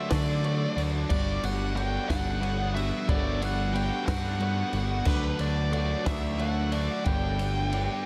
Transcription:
Already playing: distorted electric guitar D3 A3 F#4, clean electric guitar F#3
0.09 picked electric bass D3, clean electric guitar A3 D4 F#4, lead electric guitar D5, glockenspiel D6, kick, snare, ride
0.42 clean electric guitar F#3 A3 D4 F#4, ride
0.76 picked electric bass D2, clean electric guitar A3 D4 F#4, ride
1.09 picked electric bass G1, clean electric guitar G3 B3 D4 F#4, lead electric guitar D5, glockenspiel D6, kick, crash
1.43 picked electric bass G1, clean electric guitar B3 D4 F#4, lead electric guitar F#5, glockenspiel F#6, ride
1.75 clean electric guitar G3 B3 D4 F#4, lead electric guitar G5, glockenspiel G6, ride
2.09 picked electric bass G1, clean electric guitar B3 D4 F#4, lead electric guitar F#5, glockenspiel F#6, kick, snare, ride
2.40 clean electric guitar G3 B3 D4 F#4, ride
2.73 clean electric guitar B3 D4 F#4, lead electric guitar E5, ride
2.77 glockenspiel E6
3.07 picked electric bass G1, clean electric guitar G3 B3 D4 F#4, lead electric guitar D5, glockenspiel D6, kick, ride
3.39 clean electric guitar B3 D4 F#4, lead electric guitar F#5, ride
3.45 glockenspiel F#6
3.73 clean electric guitar G3 B3 D4 F#4, lead electric guitar G5, glockenspiel G6, ride
4.06 picked electric bass G2, clean electric guitar B3 D4 F#4, lead electric guitar F#5, glockenspiel F#6, kick, snare, ride
4.40 clean electric guitar G3 B3 D4 F#4, ride
4.73 picked electric bass G1, clean electric guitar D4 F#4, ride
4.77 clean electric guitar B3
5.05 picked electric bass D2, clean electric guitar D3 F#3 A3 D4 F#4, lead electric guitar B4, glockenspiel B5, kick, crash
5.39 picked electric bass D2, clean electric guitar A3 D4 F#4, lead electric guitar D5, glockenspiel D6, ride
5.71 clean electric guitar F#3 A3 D4 F#4, lead electric guitar D5, glockenspiel D6, ride
6.04 picked electric bass D2, clean electric guitar A3 D4 F#4, lead electric guitar E5, glockenspiel E6, kick, snare, ride
6.38 clean electric guitar F#3 A3 D4 F#4, lead electric guitar F#5, glockenspiel F#6, ride
6.71 clean electric guitar A3 D4 F#4, lead electric guitar D5, glockenspiel D6, ride
7.04 picked electric bass G1, clean electric guitar G2 D3 G3 B3 D4 G4, lead electric guitar G5, glockenspiel G6, kick, ride
7.38 clean electric guitar G3 B3 D4 G4, ride
7.72 clean electric guitar G3 B3 D4 G4, ride

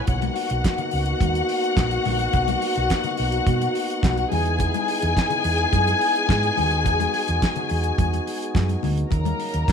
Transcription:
0.07 fingered electric bass B1, french horn section A#3 B3 D#4 F#4, string section F#4 F#5, kick, closed hi-hat, low conga
0.22 closed hi-hat, muted conga, high conga
0.36 open hi-hat
0.50 fingered electric bass B1, closed hi-hat
0.64 kick, snare, clap, closed hi-hat, muted conga
0.78 closed hi-hat, low conga
0.91 fingered electric bass C#2, open hi-hat
1.06 closed hi-hat
1.21 fingered electric bass D#2, kick, closed hi-hat, muted conga, high conga
1.35 closed hi-hat
1.49 open hi-hat
1.64 closed hi-hat
1.77 fingered electric bass A#1, kick, snare, clap, closed hi-hat, high conga
1.91 closed hi-hat
2.05 fingered electric bass A#1, open hi-hat, high conga, low conga
2.19 closed hi-hat
2.33 fingered electric bass B1, kick, closed hi-hat, muted conga, low conga
2.48 closed hi-hat, muted conga, high conga
2.62 open hi-hat
2.75 fingered electric bass B1, closed hi-hat
2.90 kick, snare, clap, closed hi-hat
3.04 closed hi-hat, muted conga, low conga
3.17 fingered electric bass B1, open hi-hat
3.32 closed hi-hat
3.47 fingered electric bass B2, kick, closed hi-hat, muted conga, high conga
3.61 closed hi-hat, muted conga
3.75 open hi-hat
3.90 closed hi-hat
4.03 fingered electric bass B1, kick, snare, clap, closed hi-hat, muted conga, high conga
4.18 closed hi-hat
4.31 fingered electric bass E2, french horn section G#3 E4, string section G#4 G#5, open hi-hat, high conga, low conga
4.46 closed hi-hat
4.59 kick, closed hi-hat, muted conga, low conga
4.74 closed hi-hat, muted conga, high conga
4.88 open hi-hat
5.02 fingered electric bass E2, closed hi-hat
5.17 kick, snare, clap, closed hi-hat
5.30 closed hi-hat, low conga
5.44 fingered electric bass E2, open hi-hat
5.58 closed hi-hat
5.73 fingered electric bass F#2, kick, closed hi-hat, muted conga, high conga
5.87 closed hi-hat, muted conga
6.01 open hi-hat
6.16 closed hi-hat
6.28 fingered electric bass G#2, kick, snare, clap, closed hi-hat, high conga
6.43 closed hi-hat, muted conga
6.57 fingered electric bass D#2, french horn section F#4, open hi-hat, high conga, low conga
6.71 closed hi-hat
6.84 fingered electric bass E2, kick, closed hi-hat, low conga
7.00 closed hi-hat, high conga
7.14 open hi-hat
7.28 fingered electric bass E2, closed hi-hat
7.42 kick, snare, clap, closed hi-hat
7.56 closed hi-hat, low conga
7.69 fingered electric bass E2, open hi-hat
7.84 closed hi-hat
7.98 fingered electric bass E2, kick, closed hi-hat, high conga
8.13 closed hi-hat, muted conga
8.27 open hi-hat
8.42 closed hi-hat
8.55 fingered electric bass F#2, kick, snare, clap, closed hi-hat, muted conga, high conga
8.69 closed hi-hat, muted conga
8.83 fingered electric bass D2, open hi-hat, high conga, low conga
8.98 closed hi-hat
9.10 fingered electric bass D#2, french horn section C#3 F#3 A#3 D#4, string section A#4 A#5, kick, closed hi-hat, muted conga, low conga
9.25 closed hi-hat, muted conga, high conga
9.40 open hi-hat
9.54 fingered electric bass D#2, closed hi-hat
9.68 kick, closed hi-hat

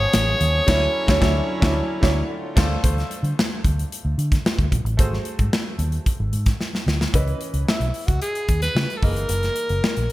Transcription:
Already playing: accordion C#3 F3 B3 G#4, grand piano A3 C#4 B4, alto saxophone C#5
0.13 fingered electric bass A1, snare, closed hi-hat
0.28 high conga
0.41 fingered electric bass D#2, closed hi-hat, muted conga, high conga, low conga
0.67 fingered electric bass D2, accordion D3 F#3 C#4 E4, grand piano F#3 D4 E4 C#5, kick, snare, crash
1.07 fingered electric bass D2, grand piano F#3 D4 E4 C#5, kick, snare
1.19 fingered electric bass D2, grand piano F#3 D4 E4 C#5, kick, snare
1.60 fingered electric bass D2, grand piano F#3 D4 E4 C#5, kick, snare
2.01 fingered electric bass D2, grand piano F#3 D4 E4 C#5, kick, snare
2.30 accordion A3 C4 F4
2.56 fingered electric bass D2, grand piano A3 D4 F4 C5, kick, snare, crash
2.82 fingered electric bass D2, grand piano A3 D4 F4 C5, kick, closed hi-hat, low conga
2.97 snare, closed hi-hat, high conga
3.11 closed hi-hat, muted conga
3.23 fingered electric bass D3, closed hi-hat, high conga
3.39 snare
3.64 fingered electric bass D2, kick, closed hi-hat, muted conga, high conga, low conga
3.79 closed hi-hat
3.92 closed hi-hat
4.05 fingered electric bass D2
4.18 fingered electric bass D3, closed hi-hat, muted conga
4.32 kick, snare, closed hi-hat
4.45 snare, muted conga
4.58 fingered electric bass D2, kick, closed hi-hat, high conga
4.72 fingered electric bass A#1, kick, closed hi-hat, high conga, low conga
4.85 fingered electric bass A1, closed hi-hat
4.97 fingered electric bass G#1, grand piano A3 F#4 G#4 C5, kick, closed hi-hat, muted conga, low conga
5.13 snare, high conga
5.25 closed hi-hat, muted conga
5.39 fingered electric bass G#2, kick, closed hi-hat, high conga
5.53 snare
5.79 fingered electric bass D#2, closed hi-hat, high conga, low conga
5.92 closed hi-hat
6.06 kick, closed hi-hat
6.20 fingered electric bass G#1
6.33 fingered electric bass G#2, closed hi-hat, muted conga
6.46 kick, snare, closed hi-hat
6.60 snare, muted conga
6.73 snare, high conga
6.86 fingered electric bass D2, snare, muted conga, high conga, low conga
7.01 snare
7.13 fingered electric bass C#2, grand piano E3 C#4 B4 D#5, kick, closed hi-hat
7.28 closed hi-hat
7.41 closed hi-hat
7.54 fingered electric bass C#2, closed hi-hat
7.68 alto saxophone E4, snare
7.80 fingered electric bass B1, closed hi-hat
7.94 open hi-hat
8.07 fingered electric bass C#2, alto saxophone F#4, kick, closed hi-hat
8.22 alto saxophone G#4, closed hi-hat
8.35 closed hi-hat
8.48 fingered electric bass D#2, kick, closed hi-hat
8.62 alto saxophone B4, snare, closed hi-hat
8.75 fingered electric bass C#3, snare
8.90 closed hi-hat
8.97 alto saxophone A4
9.01 fingered electric bass F#1, grand piano E3 A#3 D#4 G#4, alto saxophone A#4, kick, open hi-hat
9.16 fingered electric bass G1, closed hi-hat
9.29 fingered electric bass F#1, closed hi-hat
9.43 snare, closed hi-hat
9.56 closed hi-hat
9.69 fingered electric bass F#1, closed hi-hat
9.84 snare
9.97 fingered electric bass A#1, closed hi-hat

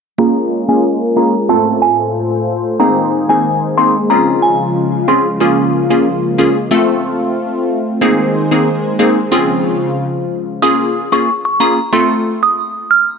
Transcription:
0.18 analog synth pad G#3 A#3 C#4 F4 A#4, synth stab A#3 C#4 F4 G#4, synth bell A#5
0.68 synth stab A#3 C#4 F4 G#4, synth bell G#5
1.16 synth stab A#3 C#4 F4 G#4, synth bell A#5
1.49 analog synth pad A2 F4 A4 C5, synth stab A3 C4 F4 A4, synth bell A5
1.82 synth bell G#5
2.79 analog synth pad D#3 G#3 A#3 G#4, synth stab A#3 C4 D#4 G#4, synth bell A#5
3.29 synth stab A#3 C4 D#4 G#4, synth bell G#5
3.77 synth stab A#3 C4 D#4 G#4, synth bell C6
4.10 analog synth pad C#3 F3 F4, synth stab C4 C#4 F4 G#4, synth bell A#5
4.42 synth bell G#5
5.08 synth stab C4 C#4 F4 G#4, synth bell C6
5.40 synth stab A#3 C#4 F4 G#4, analog synth pad A#3
5.90 synth stab A#3 C#4 F4 G#4
6.38 synth stab A#3 C#4 F4 G#4
6.71 synth stab A3 C4 F4 A4, analog synth pad A3 C4 F4
8.01 analog synth pad D#3 G#3 A#3 G#4 C5, synth stab A#3 C4 D#4 G#4
8.51 synth stab A#3 C4 D#4 G#4
8.99 synth stab A#3 C4 D#4 G#4
9.32 analog synth pad C#3 F3 F4, synth stab C4 C#4 F4 G#4
10.62 synth stab A#3 C#4 F4 G#4, synth bell D#6
11.12 synth stab A#3 C#4 F4 G#4, synth bell C#6
11.45 synth bell C#6
11.60 synth stab A#3 C#4 F4 G#4, synth bell A#5
11.93 synth stab A3 C4 F4 A4, synth bell C6
12.43 synth bell D#6
12.91 synth bell F6

